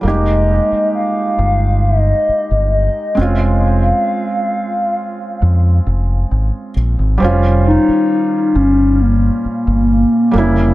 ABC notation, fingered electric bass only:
X:1
M:4/4
L:1/16
Q:1/4=67
K:Ebmix
V:1 name="Fingered electric bass" clef=bass
F,,,3 z3 G,,,4 z G,,,2 z F,,,2- | F,,,2 z6 F,,2 F,,,2 A,,, z B,,, A,,, | F,,,3 z3 G,,,4 z G,,,2 z F,,,2 |]